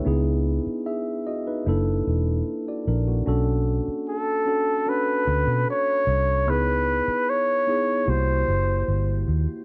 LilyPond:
<<
  \new Staff \with { instrumentName = "Flugelhorn" } { \time 4/4 \key b \dorian \tempo 4 = 75 r1 | r4 a'4 b'4 cis''4 | b'4 cis''4 c''4. r8 | }
  \new Staff \with { instrumentName = "Tine electric piano" } { \time 4/4 \key b \dorian << { <d' b'>16 r8. <gis' e''>8 <fis' dis''>16 <dis' b'>8 r4 <fis' d''>16 <d' ais'>16 <ais fis'>16~ | <ais fis'>16 r2. r8. | r1 | } \\ { <b dis' e' gis'>4 r4 <ais d' e' a'>4 r4 | <cis' d' fis' a'>4 r8 <cis' d' fis' a'>8 <cis' d' fis' a'>4. r8 | <b dis' e' gis'>4 r8 <b dis' e' gis'>8 <bes e' fis' g'>4. r8 | } >> }
  \new Staff \with { instrumentName = "Fingered electric bass" } { \clef bass \time 4/4 \key b \dorian cis,8. r4 r16 fis,,8 e,,8 r8 ais,,8 | b,,8. r4. r16 d,16 b,16 r8 c,8 | cis,8. r4 r16 c,8 fis,,8 g,,8 dis,16 r16 | }
>>